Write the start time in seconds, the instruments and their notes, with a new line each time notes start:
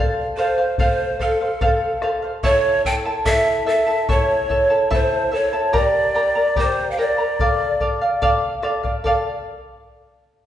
Already playing: charango A4 C5
0.00 charango F5
0.37 charango A4 C5 F5, pan flute C5
0.58 charango C5 F5
0.78 charango A4 C5 F5, pan flute C5, bombo low
1.19 charango A4 C5 F5, pan flute A4, bombo low
1.41 charango C5 F5
1.61 charango A4 C5 F5, bombo low
2.02 charango A4 C5 F5, bombo rim
2.22 charango C5 F5
2.43 charango E4 A4 C#5 E5 A5, pan flute C#5, bombo low
2.85 charango E4 A4 E5 A5, pan flute G5, bombo low
3.05 charango E4 A4 A5
3.25 charango E4 A4 C#5 E5 A5, pan flute E5, bombo low
3.66 charango E4 A4 E5 A5, pan flute E5
3.87 charango E4 A4 A5
4.09 charango E4 A4 C#5 E5 A5, pan flute C#5, bombo low
4.49 charango E4 A4 E5 A5, bombo low
4.70 charango E4 A4 A5
4.90 charango E4 A4 E5 A5, pan flute C5, bombo low
5.31 charango E4 A4 E5 A5, pan flute C#5
5.53 charango E4 A4 A5
5.73 charango G4 A#4 D5 G5 A#5, pan flute D5, bombo low
6.14 charango A#4 D5 G5 A#5
6.35 charango A#4 D5 A#5
6.56 charango G4 A#4 D5 G5 A#5, pan flute C5, bombo low
6.91 pan flute F5
6.97 charango A#4 D5 G5 A#5, pan flute D5
7.18 charango A#4 D5 A#5
7.39 charango A4 D5 F5, bombo low
7.80 charango A4 D5 F5, bombo low
8.01 charango D5 F5
8.22 charango A4 D5 F5, bombo low
8.62 charango A4 D5 F5, bombo rim
8.83 charango D5 F5, bombo low
9.04 charango A4 D5 F5, bombo low